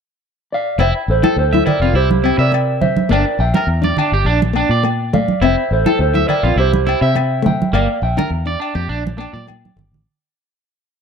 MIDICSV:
0, 0, Header, 1, 7, 480
1, 0, Start_track
1, 0, Key_signature, -1, "major"
1, 0, Tempo, 579151
1, 662, Time_signature, 4, 2, 24, 8
1, 9127, End_track
2, 0, Start_track
2, 0, Title_t, "Clean electric guitar"
2, 0, Program_c, 0, 27
2, 435, Note_on_c, 0, 74, 64
2, 450, Note_on_c, 0, 77, 83
2, 652, Note_off_c, 0, 74, 0
2, 661, Note_off_c, 0, 77, 0
2, 666, Note_on_c, 0, 72, 68
2, 681, Note_on_c, 0, 76, 86
2, 730, Note_off_c, 0, 72, 0
2, 743, Note_off_c, 0, 76, 0
2, 911, Note_on_c, 0, 69, 57
2, 919, Note_on_c, 0, 72, 77
2, 1130, Note_off_c, 0, 69, 0
2, 1134, Note_off_c, 0, 72, 0
2, 1147, Note_on_c, 0, 69, 59
2, 1152, Note_on_c, 0, 72, 78
2, 1368, Note_off_c, 0, 69, 0
2, 1386, Note_off_c, 0, 72, 0
2, 1386, Note_on_c, 0, 70, 66
2, 1390, Note_on_c, 0, 74, 83
2, 1607, Note_off_c, 0, 70, 0
2, 1620, Note_off_c, 0, 74, 0
2, 1621, Note_on_c, 0, 67, 65
2, 1623, Note_on_c, 0, 72, 84
2, 1962, Note_off_c, 0, 67, 0
2, 1986, Note_off_c, 0, 72, 0
2, 1989, Note_on_c, 0, 70, 66
2, 1990, Note_on_c, 0, 74, 88
2, 2315, Note_off_c, 0, 74, 0
2, 2316, Note_off_c, 0, 70, 0
2, 2331, Note_on_c, 0, 72, 65
2, 2332, Note_on_c, 0, 76, 84
2, 2558, Note_off_c, 0, 72, 0
2, 2580, Note_on_c, 0, 70, 71
2, 2582, Note_off_c, 0, 76, 0
2, 2584, Note_on_c, 0, 74, 88
2, 2802, Note_off_c, 0, 74, 0
2, 2803, Note_off_c, 0, 70, 0
2, 2817, Note_on_c, 0, 79, 98
2, 2824, Note_on_c, 0, 76, 76
2, 4225, Note_off_c, 0, 76, 0
2, 4256, Note_on_c, 0, 74, 64
2, 4259, Note_off_c, 0, 79, 0
2, 4262, Note_on_c, 0, 77, 82
2, 4479, Note_off_c, 0, 74, 0
2, 4480, Note_off_c, 0, 77, 0
2, 4507, Note_on_c, 0, 76, 92
2, 4509, Note_on_c, 0, 72, 68
2, 4724, Note_off_c, 0, 76, 0
2, 4725, Note_off_c, 0, 72, 0
2, 4741, Note_on_c, 0, 69, 57
2, 4745, Note_on_c, 0, 72, 76
2, 4961, Note_off_c, 0, 69, 0
2, 4969, Note_off_c, 0, 72, 0
2, 4979, Note_on_c, 0, 72, 78
2, 4984, Note_on_c, 0, 69, 60
2, 5200, Note_off_c, 0, 72, 0
2, 5203, Note_off_c, 0, 69, 0
2, 5208, Note_on_c, 0, 74, 80
2, 5209, Note_on_c, 0, 70, 67
2, 5434, Note_off_c, 0, 70, 0
2, 5457, Note_off_c, 0, 74, 0
2, 5464, Note_on_c, 0, 67, 67
2, 5467, Note_on_c, 0, 72, 85
2, 5801, Note_off_c, 0, 67, 0
2, 5815, Note_off_c, 0, 72, 0
2, 5818, Note_on_c, 0, 76, 86
2, 5825, Note_on_c, 0, 72, 66
2, 6152, Note_off_c, 0, 72, 0
2, 6173, Note_off_c, 0, 76, 0
2, 6182, Note_on_c, 0, 76, 64
2, 6183, Note_on_c, 0, 79, 86
2, 6401, Note_off_c, 0, 79, 0
2, 6402, Note_off_c, 0, 76, 0
2, 6413, Note_on_c, 0, 77, 83
2, 6423, Note_on_c, 0, 74, 70
2, 6637, Note_off_c, 0, 77, 0
2, 6642, Note_off_c, 0, 74, 0
2, 6656, Note_on_c, 0, 79, 80
2, 6667, Note_on_c, 0, 76, 64
2, 8065, Note_off_c, 0, 79, 0
2, 8070, Note_off_c, 0, 76, 0
2, 9127, End_track
3, 0, Start_track
3, 0, Title_t, "Clean electric guitar"
3, 0, Program_c, 1, 27
3, 659, Note_on_c, 1, 64, 77
3, 770, Note_off_c, 1, 64, 0
3, 1027, Note_on_c, 1, 69, 69
3, 1125, Note_off_c, 1, 69, 0
3, 1264, Note_on_c, 1, 76, 68
3, 1363, Note_off_c, 1, 76, 0
3, 1374, Note_on_c, 1, 64, 64
3, 1486, Note_off_c, 1, 64, 0
3, 1506, Note_on_c, 1, 65, 64
3, 1604, Note_off_c, 1, 65, 0
3, 1618, Note_on_c, 1, 64, 74
3, 1728, Note_off_c, 1, 64, 0
3, 1854, Note_on_c, 1, 64, 65
3, 1966, Note_off_c, 1, 64, 0
3, 1979, Note_on_c, 1, 76, 74
3, 2080, Note_off_c, 1, 76, 0
3, 2579, Note_on_c, 1, 62, 79
3, 2688, Note_off_c, 1, 62, 0
3, 2944, Note_on_c, 1, 70, 67
3, 3041, Note_off_c, 1, 70, 0
3, 3185, Note_on_c, 1, 74, 72
3, 3281, Note_off_c, 1, 74, 0
3, 3300, Note_on_c, 1, 62, 65
3, 3408, Note_off_c, 1, 62, 0
3, 3427, Note_on_c, 1, 67, 65
3, 3523, Note_off_c, 1, 67, 0
3, 3532, Note_on_c, 1, 62, 80
3, 3643, Note_off_c, 1, 62, 0
3, 3781, Note_on_c, 1, 62, 64
3, 3888, Note_off_c, 1, 62, 0
3, 3902, Note_on_c, 1, 74, 70
3, 4000, Note_off_c, 1, 74, 0
3, 4488, Note_on_c, 1, 64, 83
3, 4600, Note_off_c, 1, 64, 0
3, 4857, Note_on_c, 1, 69, 74
3, 4956, Note_off_c, 1, 69, 0
3, 5098, Note_on_c, 1, 76, 74
3, 5196, Note_off_c, 1, 76, 0
3, 5211, Note_on_c, 1, 64, 65
3, 5321, Note_off_c, 1, 64, 0
3, 5332, Note_on_c, 1, 65, 68
3, 5433, Note_off_c, 1, 65, 0
3, 5451, Note_on_c, 1, 64, 78
3, 5561, Note_off_c, 1, 64, 0
3, 5690, Note_on_c, 1, 64, 67
3, 5801, Note_off_c, 1, 64, 0
3, 5820, Note_on_c, 1, 76, 74
3, 5918, Note_off_c, 1, 76, 0
3, 6409, Note_on_c, 1, 58, 85
3, 6520, Note_off_c, 1, 58, 0
3, 6778, Note_on_c, 1, 70, 70
3, 6877, Note_off_c, 1, 70, 0
3, 7019, Note_on_c, 1, 74, 74
3, 7117, Note_off_c, 1, 74, 0
3, 7127, Note_on_c, 1, 62, 65
3, 7240, Note_off_c, 1, 62, 0
3, 7253, Note_on_c, 1, 67, 60
3, 7355, Note_off_c, 1, 67, 0
3, 7368, Note_on_c, 1, 62, 82
3, 7481, Note_off_c, 1, 62, 0
3, 7609, Note_on_c, 1, 62, 71
3, 7722, Note_off_c, 1, 62, 0
3, 7737, Note_on_c, 1, 74, 68
3, 7837, Note_off_c, 1, 74, 0
3, 9127, End_track
4, 0, Start_track
4, 0, Title_t, "Nylon-string guitar"
4, 0, Program_c, 2, 24
4, 1021, Note_on_c, 2, 64, 69
4, 1182, Note_off_c, 2, 64, 0
4, 1279, Note_on_c, 2, 64, 64
4, 1434, Note_off_c, 2, 64, 0
4, 1512, Note_on_c, 2, 60, 68
4, 1669, Note_off_c, 2, 60, 0
4, 1854, Note_on_c, 2, 60, 68
4, 2014, Note_off_c, 2, 60, 0
4, 2563, Note_on_c, 2, 58, 89
4, 2727, Note_off_c, 2, 58, 0
4, 3165, Note_on_c, 2, 62, 67
4, 3329, Note_off_c, 2, 62, 0
4, 3758, Note_on_c, 2, 58, 70
4, 3922, Note_off_c, 2, 58, 0
4, 4008, Note_on_c, 2, 58, 74
4, 4169, Note_off_c, 2, 58, 0
4, 4255, Note_on_c, 2, 57, 69
4, 4413, Note_off_c, 2, 57, 0
4, 4494, Note_on_c, 2, 60, 86
4, 4652, Note_off_c, 2, 60, 0
4, 4857, Note_on_c, 2, 64, 68
4, 5017, Note_off_c, 2, 64, 0
4, 5090, Note_on_c, 2, 64, 72
4, 5252, Note_off_c, 2, 64, 0
4, 5344, Note_on_c, 2, 60, 65
4, 5502, Note_off_c, 2, 60, 0
4, 6154, Note_on_c, 2, 57, 69
4, 6319, Note_off_c, 2, 57, 0
4, 6414, Note_on_c, 2, 58, 89
4, 6573, Note_off_c, 2, 58, 0
4, 6773, Note_on_c, 2, 62, 69
4, 6935, Note_off_c, 2, 62, 0
4, 7010, Note_on_c, 2, 62, 69
4, 7173, Note_off_c, 2, 62, 0
4, 7252, Note_on_c, 2, 58, 67
4, 7414, Note_off_c, 2, 58, 0
4, 7609, Note_on_c, 2, 58, 70
4, 7770, Note_off_c, 2, 58, 0
4, 7852, Note_on_c, 2, 58, 81
4, 8013, Note_off_c, 2, 58, 0
4, 9127, End_track
5, 0, Start_track
5, 0, Title_t, "Fingered electric bass"
5, 0, Program_c, 3, 33
5, 648, Note_on_c, 3, 29, 86
5, 760, Note_off_c, 3, 29, 0
5, 896, Note_on_c, 3, 33, 88
5, 1004, Note_off_c, 3, 33, 0
5, 1129, Note_on_c, 3, 38, 81
5, 1334, Note_off_c, 3, 38, 0
5, 1488, Note_on_c, 3, 29, 76
5, 1590, Note_off_c, 3, 29, 0
5, 1603, Note_on_c, 3, 36, 92
5, 1916, Note_off_c, 3, 36, 0
5, 1971, Note_on_c, 3, 48, 85
5, 2470, Note_off_c, 3, 48, 0
5, 2570, Note_on_c, 3, 31, 91
5, 2679, Note_off_c, 3, 31, 0
5, 2807, Note_on_c, 3, 34, 97
5, 2917, Note_off_c, 3, 34, 0
5, 3039, Note_on_c, 3, 40, 81
5, 3246, Note_off_c, 3, 40, 0
5, 3413, Note_on_c, 3, 31, 80
5, 3512, Note_off_c, 3, 31, 0
5, 3520, Note_on_c, 3, 34, 93
5, 3832, Note_off_c, 3, 34, 0
5, 3888, Note_on_c, 3, 46, 86
5, 4387, Note_off_c, 3, 46, 0
5, 4485, Note_on_c, 3, 29, 99
5, 4595, Note_off_c, 3, 29, 0
5, 4730, Note_on_c, 3, 33, 88
5, 4837, Note_off_c, 3, 33, 0
5, 4964, Note_on_c, 3, 38, 79
5, 5168, Note_off_c, 3, 38, 0
5, 5329, Note_on_c, 3, 34, 82
5, 5428, Note_off_c, 3, 34, 0
5, 5437, Note_on_c, 3, 36, 94
5, 5750, Note_off_c, 3, 36, 0
5, 5812, Note_on_c, 3, 48, 87
5, 6310, Note_off_c, 3, 48, 0
5, 6404, Note_on_c, 3, 31, 96
5, 6514, Note_off_c, 3, 31, 0
5, 6646, Note_on_c, 3, 34, 93
5, 6756, Note_off_c, 3, 34, 0
5, 6882, Note_on_c, 3, 40, 87
5, 7087, Note_off_c, 3, 40, 0
5, 7253, Note_on_c, 3, 41, 83
5, 7351, Note_off_c, 3, 41, 0
5, 7364, Note_on_c, 3, 34, 87
5, 7675, Note_off_c, 3, 34, 0
5, 7734, Note_on_c, 3, 46, 82
5, 8032, Note_off_c, 3, 46, 0
5, 8090, Note_on_c, 3, 31, 72
5, 8208, Note_off_c, 3, 31, 0
5, 8217, Note_on_c, 3, 33, 70
5, 8323, Note_off_c, 3, 33, 0
5, 9127, End_track
6, 0, Start_track
6, 0, Title_t, "Muted nylon-string guitar strokes"
6, 653, Note_on_c, 9, 29, 83
6, 736, Note_off_c, 9, 29, 0
6, 2089, Note_on_c, 9, 29, 73
6, 2172, Note_off_c, 9, 29, 0
6, 2933, Note_on_c, 9, 29, 69
6, 3016, Note_off_c, 9, 29, 0
6, 5692, Note_on_c, 9, 29, 75
6, 5775, Note_off_c, 9, 29, 0
6, 5931, Note_on_c, 9, 29, 80
6, 6013, Note_off_c, 9, 29, 0
6, 8096, Note_on_c, 9, 29, 74
6, 8179, Note_off_c, 9, 29, 0
6, 9127, End_track
7, 0, Start_track
7, 0, Title_t, "Drums"
7, 666, Note_on_c, 9, 68, 65
7, 748, Note_off_c, 9, 68, 0
7, 1025, Note_on_c, 9, 63, 70
7, 1025, Note_on_c, 9, 68, 63
7, 1108, Note_off_c, 9, 63, 0
7, 1108, Note_off_c, 9, 68, 0
7, 1271, Note_on_c, 9, 63, 63
7, 1354, Note_off_c, 9, 63, 0
7, 1381, Note_on_c, 9, 68, 60
7, 1382, Note_on_c, 9, 64, 66
7, 1464, Note_off_c, 9, 68, 0
7, 1465, Note_off_c, 9, 64, 0
7, 1745, Note_on_c, 9, 63, 72
7, 1828, Note_off_c, 9, 63, 0
7, 1868, Note_on_c, 9, 68, 61
7, 1951, Note_off_c, 9, 68, 0
7, 2106, Note_on_c, 9, 68, 65
7, 2189, Note_off_c, 9, 68, 0
7, 2333, Note_on_c, 9, 63, 61
7, 2333, Note_on_c, 9, 64, 65
7, 2416, Note_off_c, 9, 63, 0
7, 2416, Note_off_c, 9, 64, 0
7, 2457, Note_on_c, 9, 63, 73
7, 2540, Note_off_c, 9, 63, 0
7, 2590, Note_on_c, 9, 68, 66
7, 2673, Note_off_c, 9, 68, 0
7, 2937, Note_on_c, 9, 63, 71
7, 2956, Note_on_c, 9, 68, 61
7, 3020, Note_off_c, 9, 63, 0
7, 3039, Note_off_c, 9, 68, 0
7, 3179, Note_on_c, 9, 63, 59
7, 3262, Note_off_c, 9, 63, 0
7, 3287, Note_on_c, 9, 64, 57
7, 3305, Note_on_c, 9, 68, 66
7, 3370, Note_off_c, 9, 64, 0
7, 3387, Note_off_c, 9, 68, 0
7, 3664, Note_on_c, 9, 63, 65
7, 3747, Note_off_c, 9, 63, 0
7, 3776, Note_on_c, 9, 68, 63
7, 3859, Note_off_c, 9, 68, 0
7, 4017, Note_on_c, 9, 68, 61
7, 4099, Note_off_c, 9, 68, 0
7, 4258, Note_on_c, 9, 63, 50
7, 4258, Note_on_c, 9, 64, 58
7, 4341, Note_off_c, 9, 63, 0
7, 4341, Note_off_c, 9, 64, 0
7, 4378, Note_on_c, 9, 63, 59
7, 4461, Note_off_c, 9, 63, 0
7, 4497, Note_on_c, 9, 68, 66
7, 4579, Note_off_c, 9, 68, 0
7, 4857, Note_on_c, 9, 63, 61
7, 4864, Note_on_c, 9, 68, 61
7, 4940, Note_off_c, 9, 63, 0
7, 4947, Note_off_c, 9, 68, 0
7, 5098, Note_on_c, 9, 63, 54
7, 5181, Note_off_c, 9, 63, 0
7, 5210, Note_on_c, 9, 64, 52
7, 5219, Note_on_c, 9, 68, 62
7, 5293, Note_off_c, 9, 64, 0
7, 5302, Note_off_c, 9, 68, 0
7, 5582, Note_on_c, 9, 63, 61
7, 5665, Note_off_c, 9, 63, 0
7, 5708, Note_on_c, 9, 68, 63
7, 5791, Note_off_c, 9, 68, 0
7, 5936, Note_on_c, 9, 68, 65
7, 6019, Note_off_c, 9, 68, 0
7, 6183, Note_on_c, 9, 63, 55
7, 6183, Note_on_c, 9, 64, 61
7, 6266, Note_off_c, 9, 63, 0
7, 6266, Note_off_c, 9, 64, 0
7, 6313, Note_on_c, 9, 63, 65
7, 6396, Note_off_c, 9, 63, 0
7, 6422, Note_on_c, 9, 68, 66
7, 6505, Note_off_c, 9, 68, 0
7, 6782, Note_on_c, 9, 68, 62
7, 6785, Note_on_c, 9, 63, 69
7, 6785, Note_on_c, 9, 64, 62
7, 6865, Note_off_c, 9, 68, 0
7, 6868, Note_off_c, 9, 63, 0
7, 6868, Note_off_c, 9, 64, 0
7, 7142, Note_on_c, 9, 68, 60
7, 7224, Note_off_c, 9, 68, 0
7, 7515, Note_on_c, 9, 63, 68
7, 7597, Note_off_c, 9, 63, 0
7, 7629, Note_on_c, 9, 68, 63
7, 7712, Note_off_c, 9, 68, 0
7, 7757, Note_on_c, 9, 63, 48
7, 7840, Note_off_c, 9, 63, 0
7, 7860, Note_on_c, 9, 68, 66
7, 7871, Note_on_c, 9, 63, 50
7, 7943, Note_off_c, 9, 68, 0
7, 7954, Note_off_c, 9, 63, 0
7, 7999, Note_on_c, 9, 63, 53
7, 8082, Note_off_c, 9, 63, 0
7, 8112, Note_on_c, 9, 64, 66
7, 8195, Note_off_c, 9, 64, 0
7, 8240, Note_on_c, 9, 64, 74
7, 8323, Note_off_c, 9, 64, 0
7, 9127, End_track
0, 0, End_of_file